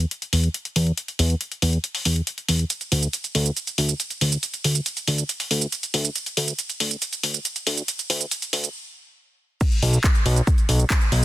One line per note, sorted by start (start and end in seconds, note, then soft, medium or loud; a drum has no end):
0.00 closed hi-hat soft
0.11 closed hi-hat medium
0.22 closed hi-hat soft
0.33 0.49 E2 medium
0.33 open hi-hat loud
0.44 closed hi-hat soft
0.54 closed hi-hat medium
0.65 closed hi-hat soft
0.76 0.92 E2 medium
0.76 open hi-hat loud
0.87 closed hi-hat soft
0.97 closed hi-hat medium
1.08 closed hi-hat soft
1.19 1.35 E2 loud
1.19 open hi-hat loud
1.30 closed hi-hat soft
1.41 closed hi-hat medium
1.52 closed hi-hat soft
1.62 1.78 E2 loud
1.62 open hi-hat loud
1.73 closed hi-hat soft
1.84 closed hi-hat medium
1.95 open hi-hat medium
2.05 2.21 E2 medium
2.05 open hi-hat loud
2.16 closed hi-hat soft
2.27 closed hi-hat medium
2.38 closed hi-hat soft
2.49 2.64 E2 medium
2.49 open hi-hat loud
2.59 closed hi-hat soft
2.70 closed hi-hat medium
2.70 shaker medium
2.81 closed hi-hat soft
2.81 shaker soft
2.92 3.08 D2 loud
2.92 open hi-hat loud
3.03 closed hi-hat soft
3.03 shaker medium
3.13 closed hi-hat medium
3.13 shaker medium
3.24 closed hi-hat soft
3.24 shaker soft
3.35 3.51 D2 loud
3.35 open hi-hat loud
3.46 closed hi-hat soft
3.46 shaker medium
3.57 closed hi-hat medium
3.57 shaker medium
3.67 closed hi-hat soft
3.67 shaker soft
3.78 3.94 D2 medium
3.78 open hi-hat loud
3.89 closed hi-hat soft
3.89 shaker medium
4.00 closed hi-hat medium
4.00 shaker medium
4.10 closed hi-hat soft
4.10 shaker soft
4.21 4.37 D2 medium
4.21 open hi-hat loud
4.32 closed hi-hat soft
4.32 shaker medium
4.43 closed hi-hat medium
4.43 shaker medium
4.54 closed hi-hat soft
4.54 shaker soft
4.64 4.80 D2 loud
4.64 open hi-hat loud
4.75 closed hi-hat soft
4.75 shaker medium
4.86 closed hi-hat medium
4.86 shaker medium
4.97 closed hi-hat soft
4.97 shaker soft
5.08 5.23 D2 loud
5.08 open hi-hat loud
5.18 closed hi-hat soft
5.18 shaker medium
5.29 closed hi-hat medium
5.29 shaker medium
5.40 open hi-hat medium
5.40 shaker soft
5.51 5.67 D2 medium
5.51 open hi-hat loud
5.62 closed hi-hat soft
5.62 shaker medium
5.72 closed hi-hat medium
5.72 shaker medium
5.83 closed hi-hat soft
5.83 shaker soft
5.94 6.10 D2 medium
5.94 open hi-hat loud
6.05 closed hi-hat soft
6.05 shaker medium
6.16 closed hi-hat loud
6.16 shaker medium
6.26 closed hi-hat soft
6.26 shaker soft
6.37 6.53 D2 loud
6.37 open hi-hat loud
6.48 closed hi-hat soft
6.48 shaker medium
6.59 closed hi-hat loud
6.59 shaker medium
6.69 closed hi-hat soft
6.69 shaker soft
6.80 6.96 D2 loud
6.80 open hi-hat loud
6.91 closed hi-hat soft
6.91 shaker medium
7.02 closed hi-hat medium
7.02 shaker medium
7.13 closed hi-hat soft
7.13 shaker soft
7.23 7.39 D2 medium
7.23 open hi-hat loud
7.34 closed hi-hat soft
7.34 shaker medium
7.45 closed hi-hat loud
7.45 shaker medium
7.56 closed hi-hat soft
7.56 shaker soft
7.67 7.82 D2 medium
7.67 open hi-hat loud
7.77 closed hi-hat soft
7.77 shaker medium
7.88 closed hi-hat loud
7.88 shaker medium
7.99 closed hi-hat soft
7.99 shaker soft
8.10 8.26 D2 loud
8.10 open hi-hat loud
8.21 closed hi-hat soft
8.21 shaker medium
8.31 closed hi-hat loud
8.31 shaker medium
8.42 closed hi-hat soft
8.42 shaker soft
8.53 8.69 D2 loud
8.53 open hi-hat loud
8.64 closed hi-hat soft
8.64 shaker medium
9.61 kick loud
9.61 closed hi-hat loud
9.61 crash loud
9.61 shaker soft
9.72 closed hi-hat soft
9.72 shaker soft
9.82 9.98 B1 loud
9.82 open hi-hat loud
9.93 closed hi-hat soft
9.93 shaker medium
10.04 kick loud
10.04 clap loud
10.04 closed hi-hat loud
10.04 shaker medium
10.15 closed hi-hat soft
10.15 shaker soft
10.26 10.42 B1 loud
10.26 open hi-hat loud
10.36 closed hi-hat soft
10.36 shaker medium
10.47 kick loud
10.47 closed hi-hat loud
10.47 shaker medium
10.58 closed hi-hat soft
10.58 shaker soft
10.69 10.85 B1 medium
10.69 open hi-hat loud
10.80 closed hi-hat soft
10.80 shaker medium
10.90 kick loud
10.90 clap loud
10.90 closed hi-hat loud
10.90 shaker medium
11.01 closed hi-hat soft
11.01 shaker soft
11.12 11.25 B1 medium
11.12 open hi-hat loud